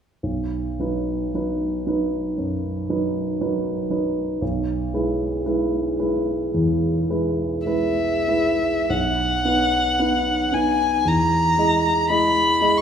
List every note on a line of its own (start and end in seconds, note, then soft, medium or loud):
0.23 0.77 B1 soft
0.80 1.30 F#3 soft
0.80 1.30 D#4 soft
0.80 1.30 B4 soft
1.35 1.83 F#3 soft
1.35 1.83 D#4 soft
1.35 1.83 B4 soft
1.86 2.34 F#3 soft
1.86 2.34 D#4 soft
1.86 2.35 B4 soft
2.38 2.88 F#2 soft
2.89 3.37 F#3 soft
2.89 3.37 D#4 soft
2.89 3.37 B4 soft
3.41 3.87 F#3 soft
3.41 3.87 D#4 soft
3.41 3.87 B4 soft
3.90 4.38 F#3 soft
3.90 4.38 D#4 soft
3.90 4.38 B4 soft
4.42 4.92 B1 soft
4.94 5.42 G#3 soft
4.94 5.42 E4 soft
4.94 5.43 B4 soft
5.46 5.95 G#3 soft
5.46 5.96 E4 soft
5.46 5.95 B4 soft
5.99 6.50 G#3 soft
5.99 6.50 E4 soft
5.99 6.50 B4 soft
6.54 7.08 E2 soft
7.10 7.63 G#3 soft
7.10 7.63 E4 soft
7.10 7.63 B4 soft
7.66 8.25 G#3 soft
7.66 8.25 E4 soft
7.66 8.25 B4 soft
7.66 8.91 E5 soft
8.28 8.86 G#3 soft
8.28 8.86 E4 soft
8.28 8.86 B4 soft
8.90 9.44 B1 soft
8.90 10.55 F#5 soft
9.45 9.96 B3 soft
9.45 9.96 D#4 soft
9.45 9.96 B4 soft
9.99 10.49 B3 soft
9.99 10.50 D#4 soft
9.99 10.49 B4 soft
10.52 11.02 B3 soft
10.52 11.02 D#4 soft
10.52 11.02 B4 soft
10.52 11.09 G#5 soft
11.05 11.57 E2 soft
11.05 12.10 A#5 soft
11.58 12.06 G#3 soft
11.58 12.06 E4 soft
11.58 12.06 D#5 soft
12.10 12.57 G#3 soft
12.10 12.57 E4 soft
12.10 12.57 D#5 soft
12.10 12.79 B5 soft
12.61 12.81 G#3 soft
12.61 12.81 E4 soft
12.61 12.81 D#5 soft
12.78 12.81 C#6 soft